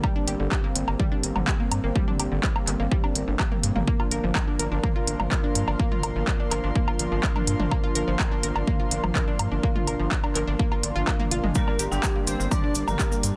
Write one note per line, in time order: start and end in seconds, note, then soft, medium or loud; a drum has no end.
0.00 3.83 G3 medium
0.00 0.13 G3 loud
0.00 11.51 A#3 medium
0.00 3.84 C4 medium
0.00 kick loud
0.00 low woodblock medium
0.16 0.22 D4 medium
0.27 0.36 G1 medium
0.27 0.31 G4 medium
0.27 closed hi-hat loud
0.40 0.48 G1 medium
0.40 0.46 D3 medium
0.52 0.58 G4 medium
0.52 kick loud
0.52 clap loud
0.52 low woodblock medium
0.64 0.67 A#3 medium
0.76 0.84 G1 medium
0.76 closed hi-hat loud
0.88 0.96 G1 medium
0.88 0.91 A#3 medium
0.88 low woodblock medium
0.99 1.09 G3 loud
0.99 kick loud
0.99 mid tom medium
1.12 1.18 D4 medium
1.23 1.32 G1 medium
1.23 closed hi-hat loud
1.36 1.43 G1 medium
1.36 1.42 D3 medium
1.36 mid tom medium
1.36 low woodblock medium
1.47 1.54 G4 medium
1.47 kick loud
1.47 clap loud
1.60 1.63 A#3 medium
1.71 1.80 G2 medium
1.71 closed hi-hat loud
1.71 low woodblock medium
1.84 1.91 G1 medium
1.84 1.87 A#3 medium
1.95 2.05 G3 loud
1.95 kick loud
2.08 2.14 D4 medium
2.08 mid tom medium
2.19 2.27 G1 medium
2.19 2.23 G4 medium
2.19 closed hi-hat loud
2.19 low woodblock medium
2.32 2.39 G1 medium
2.32 2.38 D3 medium
2.43 2.50 G4 medium
2.43 kick loud
2.43 clap loud
2.56 2.59 A#3 medium
2.56 low woodblock medium
2.67 2.75 G1 loud
2.67 clap soft
2.67 closed hi-hat loud
2.80 2.87 G1 medium
2.80 2.83 A#3 medium
2.91 3.01 G3 loud
2.91 kick loud
3.04 3.10 D4 medium
3.04 low woodblock medium
3.15 3.24 G1 medium
3.15 closed hi-hat loud
3.28 3.35 G1 medium
3.28 3.34 D3 medium
3.39 3.46 G4 medium
3.39 kick loud
3.39 clap loud
3.39 low woodblock medium
3.52 3.55 A#3 medium
3.52 mid tom medium
3.63 3.72 G2 medium
3.63 closed hi-hat loud
3.76 3.83 G1 medium
3.76 3.79 A#3 medium
3.76 mid tom medium
3.87 11.51 F3 medium
3.87 3.97 A#3 loud
3.87 13.36 D4 medium
3.87 12.64 A#4 medium
3.87 kick loud
4.00 4.06 F4 medium
4.00 low woodblock medium
4.04 12.98 F5 medium
4.11 4.20 G1 medium
4.11 4.15 A#4 medium
4.11 closed hi-hat loud
4.24 4.31 G1 medium
4.24 4.30 F3 medium
4.35 4.42 A#4 medium
4.35 kick loud
4.35 clap loud
4.35 low woodblock medium
4.41 13.24 C6 medium
4.48 4.51 D4 medium
4.59 4.68 G1 loud
4.59 4.69 A#4 medium
4.59 closed hi-hat loud
4.72 4.79 G1 medium
4.72 4.75 D4 medium
4.83 4.93 A#3 loud
4.83 kick loud
4.83 mid tom medium
4.83 low woodblock medium
4.96 5.02 F4 medium
5.07 5.16 G1 medium
5.07 closed hi-hat loud
5.20 5.27 G1 medium
5.20 5.26 F3 medium
5.20 mid tom medium
5.20 low woodblock medium
5.31 5.38 A#4 medium
5.31 kick loud
5.31 clap loud
5.44 5.47 D4 medium
5.55 5.64 G2 medium
5.55 closed hi-hat loud
5.68 5.75 G1 medium
5.68 5.71 D4 medium
5.68 low woodblock medium
5.79 5.89 A#3 loud
5.79 kick loud
5.92 5.98 F4 medium
5.92 mid tom medium
6.03 6.12 G1 medium
6.03 6.07 A#4 medium
6.03 closed hi-hat loud
6.03 low woodblock medium
6.16 6.23 G1 medium
6.16 6.22 F3 medium
6.27 6.34 A#4 medium
6.27 kick loud
6.27 clap loud
6.40 6.43 D4 medium
6.51 6.59 G1 loud
6.51 6.61 A#4 medium
6.51 clap soft
6.51 closed hi-hat loud
6.51 low woodblock medium
6.64 6.71 G1 medium
6.64 6.67 D4 medium
6.75 6.85 A#3 loud
6.75 kick loud
6.88 6.94 F4 medium
6.88 low woodblock medium
6.99 7.08 G1 medium
6.99 closed hi-hat loud
7.12 7.19 G1 medium
7.12 7.18 F3 medium
7.23 7.30 A#4 medium
7.23 kick loud
7.23 clap loud
7.36 7.39 D4 medium
7.36 mid tom medium
7.36 low woodblock medium
7.47 7.56 G2 medium
7.47 closed hi-hat loud
7.60 7.67 G1 medium
7.60 7.63 D4 medium
7.60 mid tom loud
7.71 7.81 A#3 loud
7.71 kick loud
7.71 low woodblock medium
7.84 7.90 F4 medium
7.95 8.04 G1 medium
7.95 7.99 A#4 medium
7.95 closed hi-hat loud
8.08 8.16 G1 medium
8.08 8.14 F3 medium
8.19 8.26 A#4 medium
8.19 kick loud
8.19 clap loud
8.19 low woodblock medium
8.32 8.35 D4 medium
8.43 8.52 G1 medium
8.43 8.53 A#4 medium
8.43 closed hi-hat loud
8.56 8.63 G1 medium
8.56 8.59 D4 medium
8.56 low woodblock medium
8.67 8.77 A#3 loud
8.67 kick loud
8.67 mid tom loud
8.80 8.86 F4 medium
8.91 9.00 G1 medium
8.91 closed hi-hat loud
9.04 9.11 G1 medium
9.04 9.10 F3 medium
9.04 mid tom loud
9.04 low woodblock medium
9.15 9.22 A#4 medium
9.15 kick loud
9.15 clap loud
9.28 9.31 D4 medium
9.39 9.48 G2 medium
9.39 closed hi-hat loud
9.39 low woodblock medium
9.52 9.59 G1 medium
9.52 9.55 D4 medium
9.63 9.73 A#3 loud
9.63 kick loud
9.76 9.82 F4 medium
9.76 mid tom medium
9.87 9.96 G1 loud
9.87 9.91 A#4 medium
9.87 closed hi-hat loud
9.87 low woodblock medium
9.99 10.07 G1 medium
9.99 10.06 F3 medium
10.11 10.18 A#4 medium
10.11 kick loud
10.11 clap loud
10.24 10.27 D4 medium
10.24 low woodblock medium
10.35 10.44 G1 loud
10.35 10.45 A#4 medium
10.35 clap soft
10.35 closed hi-hat loud
10.48 10.55 G1 medium
10.48 10.51 D4 medium
10.59 10.69 A#3 loud
10.59 kick loud
10.72 10.78 F4 medium
10.72 low woodblock medium
10.83 10.91 G1 medium
10.83 closed hi-hat loud
10.96 11.03 G1 medium
10.96 11.05 F4 loud
11.07 11.14 A#3 loud
11.07 kick loud
11.07 clap loud
11.07 low woodblock medium
11.20 11.23 A#3 loud
11.20 mid tom medium
11.31 11.40 G1 medium
11.31 11.41 F4 loud
11.31 closed hi-hat loud
11.44 11.51 G1 medium
11.44 11.53 G#3 medium
11.44 mid tom loud
11.55 11.65 G3 loud
11.55 13.36 G3 medium
11.55 13.36 A#3 medium
11.55 11.83 A#3 medium
11.55 11.83 A#4 loud
11.55 11.83 A#5 loud
11.55 kick loud
11.55 cabasa medium
11.68 11.74 D4 medium
11.68 low woodblock medium
11.79 11.88 G1 loud
11.79 11.83 G4 medium
11.79 closed hi-hat loud
11.79 cabasa medium
11.91 11.99 G1 medium
11.91 11.98 D3 medium
11.91 12.19 G3 medium
11.91 12.19 G4 loud
11.91 12.19 G5 medium
11.91 cabasa soft
12.03 12.10 G4 medium
12.03 kick loud
12.03 clap loud
12.03 cabasa medium
12.03 low woodblock medium
12.16 12.19 A#3 medium
12.27 12.36 G1 loud
12.27 12.46 C4 medium
12.27 12.37 G4 medium
12.27 12.46 C5 medium
12.27 13.36 D5 medium
12.27 12.46 C6 medium
12.27 closed hi-hat loud
12.27 cabasa loud
12.40 12.47 G1 medium
12.40 12.43 A#3 medium
12.40 cabasa soft
12.51 12.61 G3 loud
12.51 12.79 D4 medium
12.51 12.79 D5 medium
12.51 12.79 D6 medium
12.51 kick loud
12.51 mid tom medium
12.51 cabasa soft
12.51 low woodblock soft
12.64 12.70 D4 medium
12.75 12.84 G1 medium
12.75 closed hi-hat loud
12.75 cabasa loud
12.88 12.95 G1 medium
12.88 12.94 D3 medium
12.88 13.15 A#3 medium
12.88 13.15 A#4 loud
12.88 13.15 A#5 medium
12.88 mid tom medium
12.88 cabasa soft
12.88 low woodblock medium
12.99 13.06 G4 medium
12.99 kick loud
12.99 clap loud
12.99 cabasa medium
13.12 13.15 A#3 medium
13.12 cabasa soft
13.23 13.32 G2 medium
13.23 closed hi-hat loud
13.23 cabasa medium